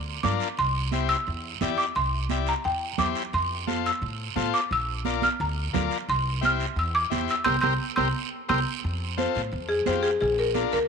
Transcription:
Already playing: upright bass D2, marimba C6
0.23 upright bass G2, transistor combo organ D4 F4 A#4, marimba D6, high conga, low conga, short guiro
0.40 short guiro
0.57 upright bass C2, marimba C6, long guiro
0.92 transistor combo organ E4 G4 C5, high conga, short guiro
1.09 marimba E6, short guiro
1.27 upright bass E2, long guiro
1.61 upright bass E2, transistor combo organ E4 G4 D5, high conga, short guiro
1.78 marimba D6, short guiro
1.95 upright bass C2, marimba C6, long guiro
2.29 transistor combo organ E4 G4 D5, high conga, short guiro
2.46 marimba A#5, short guiro
2.64 upright bass E2, marimba G5, long guiro
2.98 upright bass E2, transistor combo organ E4 G4 C5, marimba D6, high conga, low conga, short guiro
3.15 short guiro
3.33 upright bass F2, marimba C6, long guiro
3.67 transistor combo organ F4 A4 C5, high conga, short guiro
3.86 marimba E6, short guiro
4.02 upright bass A2, long guiro
4.36 upright bass A2, transistor combo organ F4 A4 C5, high conga, short guiro
4.54 marimba D6, short guiro
4.71 upright bass A#1, marimba E6, long guiro
5.05 transistor combo organ F4 A#4 D5, high conga, short guiro
5.22 marimba F6, high conga, short guiro
5.40 upright bass D2, marimba A#5, long guiro
5.73 upright bass D2, transistor combo organ F4 A#4 D5, high conga, low conga, short guiro
5.91 short guiro
6.09 upright bass C2, marimba C6, long guiro
6.41 transistor combo organ E4 G4 C5, marimba F6, high conga, short guiro
6.60 short guiro
6.76 upright bass E2, marimba E6, long guiro
6.95 marimba D6
7.10 upright bass E2, transistor combo organ E4 G4 C5, high conga, short guiro
7.28 marimba E6, short guiro
7.44 upright bass C2, transistor combo organ G4 A#4 C5, marimba C6 E6 G6, high conga, long guiro
7.61 upright bass C2, transistor combo organ G4 A#4 C5, marimba C6 E6 G6, high conga, long guiro
7.96 upright bass C2, transistor combo organ G4 A#4 C5, marimba C6 E6 G6, high conga, long guiro
8.49 upright bass C2, transistor combo organ G4 A#4 C5, marimba C6 E6 G6, high conga, long guiro
8.83 upright bass F2, long guiro
9.17 transistor combo organ C4 F4 A4, marimba C5, high conga, short guiro
9.35 upright bass A2, short guiro
9.52 upright bass F2, long guiro
9.69 marimba G#4
9.86 upright bass F2, transistor combo organ C4 F4 G4, marimba C5, high conga, short guiro
10.03 marimba G#4, short guiro
10.20 upright bass A#1, marimba G#4, long guiro
10.39 marimba A#4
10.54 transistor combo organ D4 F4 A#4, high conga, short guiro
10.72 upright bass D2, marimba A#4, short guiro

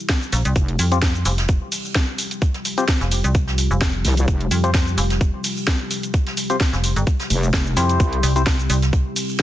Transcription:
Already playing: ambient pad C4 E4 G4
0.09 kick, snare, closed hi-hat, shaker
0.22 shaker
0.33 fm bass A#1, snare, closed hi-hat, open hi-hat, shaker
0.45 fm bass C2, closed hi-hat, shaker
0.56 wobble bass F1, ambient pad C4 F4 G4, kick, closed hi-hat, shaker
0.68 closed hi-hat
0.79 fm bass F2, closed hi-hat, open hi-hat, shaker
0.92 synth stab C4 F4 G4 C5, closed hi-hat, shaker
1.02 kick, snare, closed hi-hat, shaker
1.15 shaker
1.25 fm bass F1, closed hi-hat, open hi-hat, shaker
1.38 snare, closed hi-hat, shaker
1.48 kick, closed hi-hat, shaker
1.72 open hi-hat, shaker
1.85 shaker
1.95 kick, snare, closed hi-hat, shaker
2.18 closed hi-hat, open hi-hat, shaker
2.31 closed hi-hat, shaker
2.42 kick, closed hi-hat, shaker
2.54 snare, closed hi-hat
2.65 closed hi-hat, open hi-hat, shaker
2.78 synth stab C4 F4 G4 C5, closed hi-hat, shaker
2.88 kick, snare, closed hi-hat, shaker
3.01 fm bass F1, snare, shaker
3.11 closed hi-hat, open hi-hat, shaker
3.24 fm bass C2, closed hi-hat, shaker
3.35 kick, closed hi-hat, shaker
3.47 snare
3.58 closed hi-hat, open hi-hat, shaker
3.71 fm bass F1, shaker
3.81 kick, snare, closed hi-hat, shaker
4.04 wobble bass C2, snare, closed hi-hat, open hi-hat, shaker
4.17 closed hi-hat, shaker
4.28 kick, closed hi-hat, shaker
4.41 closed hi-hat
4.51 fm bass F2, closed hi-hat, open hi-hat, shaker
4.64 synth stab C4 F4 G4 C5, closed hi-hat, shaker
4.74 kick, snare, closed hi-hat, shaker
4.87 shaker
4.98 fm bass F1, closed hi-hat, open hi-hat, shaker
5.10 snare, closed hi-hat, shaker
5.21 kick, closed hi-hat, shaker
5.44 open hi-hat, shaker
5.57 shaker
5.67 kick, snare, closed hi-hat, shaker
5.91 closed hi-hat, open hi-hat, shaker
6.03 closed hi-hat, shaker
6.14 kick, closed hi-hat, shaker
6.26 snare, closed hi-hat
6.37 closed hi-hat, open hi-hat, shaker
6.50 synth stab C4 F4 G4 C5, closed hi-hat, shaker
6.60 kick, snare, closed hi-hat, shaker
6.73 fm bass F1, snare, shaker
6.83 closed hi-hat, open hi-hat, shaker
6.96 fm bass G1, closed hi-hat, shaker
7.07 kick, closed hi-hat, shaker
7.20 snare, closed hi-hat, shaker
7.30 wobble bass F1, closed hi-hat, open hi-hat, shaker
7.43 shaker
7.53 kick, snare, closed hi-hat, shaker
7.66 shaker
7.76 fm bass F2, synth stab C4 E4 G4 C5, snare, closed hi-hat, open hi-hat, shaker
7.89 closed hi-hat, shaker
8.00 wobble bass C2, ambient pad E4, kick, closed hi-hat, shaker
8.13 closed hi-hat
8.23 fm bass C2, closed hi-hat, open hi-hat, shaker
8.36 synth stab C4 E4 G4 C5, closed hi-hat, shaker
8.46 kick, snare, closed hi-hat, shaker
8.59 shaker
8.70 fm bass C2, closed hi-hat, open hi-hat, shaker
8.82 snare, closed hi-hat, shaker
8.93 kick, closed hi-hat, shaker
9.16 open hi-hat, shaker
9.29 shaker
9.39 closed hi-hat

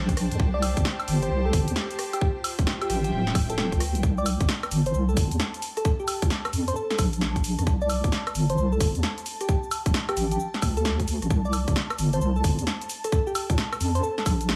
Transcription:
Already playing: wobble bass A#1, string section D4 C5 A5, ambient pad G5
0.09 kick, closed hi-hat
0.17 cross-stick, open hi-hat
0.31 wobble bass F2, closed hi-hat
0.40 wobble bass C2, string section G4, kick
0.54 soft synth lead D5
0.62 open hi-hat, high woodblock
0.77 wobble bass G1, kick, closed hi-hat
0.85 snare
1.00 closed hi-hat, high woodblock
1.08 wobble bass G1, open hi-hat
1.22 soft synth lead C5, closed hi-hat
1.31 wobble bass C2, soft synth lead C5
1.45 soft synth lead A4
1.53 wobble bass G1, kick, open hi-hat
1.68 wobble bass E2, closed hi-hat
1.76 snare
1.91 closed hi-hat
1.99 cross-stick, open hi-hat
2.13 soft synth lead G4, closed hi-hat, high woodblock
2.21 string section F4, kick
2.44 open hi-hat, high woodblock
2.59 wobble bass D1, kick, closed hi-hat
2.64 string section E5, snare
2.80 soft synth lead G4, string section G5, closed hi-hat, high woodblock
2.90 wobble bass A1, soft synth lead G4, cross-stick, open hi-hat
3.04 soft synth lead G4, closed hi-hat
3.12 wobble bass D1
3.27 snare
3.35 kick, open hi-hat, high woodblock
3.50 soft synth lead A4, closed hi-hat
3.58 soft synth lead A4, snare
3.72 wobble bass D2, kick, closed hi-hat
3.80 cross-stick, open hi-hat
3.95 wobble bass C2, closed hi-hat
4.03 wobble bass C2, ambient pad A5, kick, shaker
4.18 soft synth lead D5, shaker
4.26 open hi-hat, high woodblock, shaker
4.40 wobble bass G1, kick, closed hi-hat, shaker
4.49 snare, shaker
4.63 cross-stick, closed hi-hat, high woodblock, shaker
4.71 wobble bass G1, open hi-hat, shaker
4.86 soft synth lead C5, closed hi-hat, shaker
4.94 wobble bass C2, soft synth lead C5, shaker
5.09 soft synth lead A4, shaker
5.17 wobble bass G1, kick, open hi-hat, shaker
5.31 wobble bass E2, closed hi-hat, shaker
5.40 snare, shaker
5.54 closed hi-hat, shaker
5.62 open hi-hat, shaker
5.77 soft synth lead A4, cross-stick, closed hi-hat, shaker
5.85 soft synth lead A4, kick, shaker
6.00 soft synth lead G4, shaker
6.08 soft synth lead G4, open hi-hat, high woodblock, shaker
6.22 wobble bass A#2, kick, closed hi-hat, shaker
6.30 snare, shaker
6.45 cross-stick, closed hi-hat, high woodblock, shaker
6.53 wobble bass F2, open hi-hat, shaker
6.68 soft synth lead C5, closed hi-hat, shaker
6.76 soft synth lead A4, shaker
6.90 soft synth lead A4, snare, shaker
6.99 wobble bass A#1, kick, open hi-hat, high woodblock, shaker
7.13 closed hi-hat, shaker
7.21 snare, shaker
7.36 kick, closed hi-hat, shaker
7.44 open hi-hat, shaker
7.59 wobble bass F2, cross-stick, closed hi-hat, shaker
7.67 wobble bass C2, kick, shaker
7.81 soft synth lead D5, shaker
7.90 open hi-hat, high woodblock, shaker
8.04 wobble bass G1, kick, closed hi-hat, shaker
8.12 snare, shaker
8.27 cross-stick, closed hi-hat, high woodblock, shaker
8.35 wobble bass G1, open hi-hat, shaker
8.50 soft synth lead C5, closed hi-hat, shaker
8.58 wobble bass C2, soft synth lead C5, shaker
8.72 soft synth lead A4, shaker
8.80 wobble bass G1, kick, open hi-hat, shaker
8.95 wobble bass E2, closed hi-hat, shaker
9.03 snare, shaker
9.18 closed hi-hat, shaker
9.26 open hi-hat, shaker
9.41 soft synth lead G4, cross-stick, closed hi-hat, shaker
9.49 kick, shaker
9.63 shaker
9.71 open hi-hat, high woodblock, shaker
9.86 wobble bass D1, kick, closed hi-hat, shaker
9.94 snare, shaker
10.09 soft synth lead G4, cross-stick, closed hi-hat, high woodblock, shaker
10.17 wobble bass A1, soft synth lead G4, open hi-hat, shaker
10.31 soft synth lead G4, closed hi-hat, shaker
10.40 shaker
10.54 snare, shaker
10.62 wobble bass D2, kick, open hi-hat, high woodblock, shaker
10.77 soft synth lead A4, closed hi-hat, shaker
10.85 soft synth lead A4, snare, shaker
11.00 kick, closed hi-hat, shaker
11.08 open hi-hat, shaker
11.22 wobble bass A1, cross-stick, closed hi-hat, shaker
11.30 wobble bass C2, kick, shaker
11.45 soft synth lead D5, shaker
11.53 open hi-hat, high woodblock, shaker
11.68 wobble bass G1, kick, closed hi-hat, shaker
11.76 snare, shaker
11.90 cross-stick, closed hi-hat, high woodblock, shaker
11.99 wobble bass G1, open hi-hat, shaker
12.13 soft synth lead C5, closed hi-hat, shaker
12.21 wobble bass C2, soft synth lead C5, shaker
12.36 soft synth lead A4, shaker
12.44 wobble bass G1, kick, open hi-hat, shaker
12.59 wobble bass E2, closed hi-hat, shaker
12.67 snare, shaker
12.81 closed hi-hat, shaker
12.89 open hi-hat, shaker
13.04 soft synth lead A4, cross-stick, closed hi-hat, shaker
13.12 soft synth lead A4, kick, shaker
13.27 soft synth lead G4, shaker
13.35 soft synth lead G4, open hi-hat, high woodblock, shaker
13.50 wobble bass A#2, kick, closed hi-hat, shaker
13.58 snare, shaker
13.73 cross-stick, closed hi-hat, high woodblock, shaker
13.80 wobble bass F2, open hi-hat, shaker
13.95 soft synth lead C5, closed hi-hat, shaker
14.03 soft synth lead A4, shaker
14.18 soft synth lead A4, snare, shaker
14.26 wobble bass A#1, kick, open hi-hat, high woodblock, shaker
14.41 closed hi-hat, shaker
14.49 snare, shaker

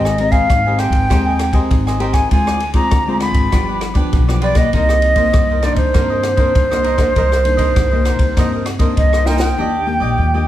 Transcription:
Already playing: upright bass G#1, nylon-string guitar G#3 C4 G4 A#4, flute D#5
0.05 cavaquinho C5 D#5 G#5, cross-stick
0.18 nylon-string guitar C4 G4 A#4, muted cavaquinho stroke, ride
0.31 cavaquinho C5 D#5 G#5, flute F5, kick, ride
0.50 upright bass G#1, kick, cross-stick, ride
0.66 nylon-string guitar C4 G4 A#4, cavaquinho C5 D#5 G#5
0.78 cavaquinho G4 C5 D#5 G#5, flute G5, cross-stick, ride
0.90 upright bass G#1, kick, ride
1.09 upright bass D#2, nylon-string guitar G#3 C4 G4 A#4, cavaquinho G4 C5 D#5 G#5, kick, cross-stick, ride
1.26 cavaquinho C5 D#5 G#5
1.39 muted cavaquinho stroke, cross-stick, ride
1.53 nylon-string guitar C4 G4 A#4, cavaquinho C5 D#5 G#5, kick, ride
1.71 upright bass G#1, nylon-string guitar D#3, kick, ride
1.87 cavaquinho C5 D#5 G#5, cross-stick
1.99 nylon-string guitar C4 G4 A#4, cavaquinho G4 C5 D#5 G#5, flute G5, ride
2.13 cavaquinho C5 G#5, flute G#5, kick, cross-stick, ride
2.31 upright bass D2, nylon-string guitar D3 G#3 C4 F4, cavaquinho F4 G#4 C5 D5, flute G#5, kick, ride
2.47 cavaquinho G#4 C5 D5, cross-stick
2.60 muted cavaquinho stroke, ride
2.73 nylon-string guitar G#3 C4 F4, cavaquinho G#4 C5 D5, flute A#5, kick, ride
2.91 upright bass D2, nylon-string guitar D3, kick, cross-stick, ride
3.07 nylon-string guitar G#3 C4 F4, cavaquinho G#4 C5 D5
3.20 cavaquinho F4 G#4 C5 D5, flute B5, cross-stick, ride
3.31 upright bass G#1, kick, ride
3.52 upright bass G1, nylon-string guitar G2 F3 B3 D4, cavaquinho F4 G4 B4 D5, kick, cross-stick, ride
3.67 cavaquinho G4 B4 D5
3.81 muted cavaquinho stroke, cross-stick, ride
3.94 nylon-string guitar F3 B3 D4, cavaquinho G4 B4 D5, kick, ride
4.13 upright bass B1, nylon-string guitar D3, kick, ride
4.28 nylon-string guitar F3 B3 D4, cavaquinho G4 B4 D5, cross-stick
4.41 cavaquinho F4 G4 B4 D5, flute D5, ride
4.55 nylon-string guitar D#3 A#3, cavaquinho G4 B4 D5, flute D#5, kick, cross-stick, ride
4.73 upright bass C2, nylon-string guitar C3, cavaquinho D#4 A#4 C5 D#5, flute D#5, kick, ride
4.89 cavaquinho A#4 C5 D#5, cross-stick
5.02 muted cavaquinho stroke, ride
5.16 nylon-string guitar D#3 A#3, cavaquinho A#4 C5 D#5, kick, ride
5.33 upright bass C2, kick, cross-stick, ride
5.50 cavaquinho A#4 C5 D#5
5.62 nylon-string guitar D#3 A#3 D4, cavaquinho D#4 A#4 C5 D#5, flute D5, cross-stick, ride
5.74 upright bass C2, flute C5, kick, ride
5.94 upright bass G2, nylon-string guitar C3 D#3 A#3 D4, cavaquinho D#4 A#4 C5 D#5, kick, cross-stick, ride
6.10 cavaquinho A#4 C5 D#5
6.23 muted cavaquinho stroke, cross-stick, ride
6.37 nylon-string guitar D#3 A#3 D4, cavaquinho A#4 C5 D#5, kick, ride
6.55 upright bass C2, nylon-string guitar G2, kick, ride
6.71 nylon-string guitar D#3 A#3 D4, cavaquinho A#4 C5 D#5, cross-stick
6.83 cavaquinho D#4 A#4 C5 D#5, ride
6.98 nylon-string guitar D#3 A#3 D4, cavaquinho A#4 C5 D#5, kick, cross-stick, ride
7.16 upright bass C2, nylon-string guitar C3, cavaquinho D#4 A#4 C5 D#5, kick, ride
7.31 cavaquinho A#4 C5 D#5, cross-stick
7.44 nylon-string guitar D#3 A#3 D4, muted cavaquinho stroke, ride
7.57 cavaquinho A#4 C5 D#5, kick, ride
7.76 upright bass C2, nylon-string guitar G2, kick, cross-stick, ride
7.91 nylon-string guitar D#3 A#3 D4, cavaquinho A#4 C5 D#5
8.05 cavaquinho D#4 A#4 C5 D#5, cross-stick, ride
8.16 upright bass C2, kick, ride
8.36 upright bass G2, nylon-string guitar C3 D#3 A#3 D4, cavaquinho D#4 A#4 C5 D#5, kick, cross-stick, ride
8.53 cavaquinho A#4 C5 D#5
8.66 muted cavaquinho stroke, cross-stick, ride
8.79 nylon-string guitar D#3 A#3 D4, cavaquinho A#4 C5 D#5, kick, ride
8.96 upright bass C2, nylon-string guitar G2, flute D#5, kick, ride
9.13 cavaquinho A#4 C5 D#5, cross-stick
9.26 nylon-string guitar D#3 A#3 D4, cavaquinho D#4 A#4 C5 D#5, flute G5, snare
9.39 cavaquinho A#4 C5 D#5, flute G5, snare
9.57 upright bass D#2, nylon-string guitar D#3 A#3 D4 G4, cavaquinho D4 G4 D5 D#5
9.86 nylon-string guitar A#3 D4 G4, muted cavaquinho stroke
10.00 upright bass A#1, cavaquinho G4 D5 D#5
10.18 upright bass D#2, nylon-string guitar A#2
10.34 nylon-string guitar A#3 D4 G4, cavaquinho G4 D5 D#5

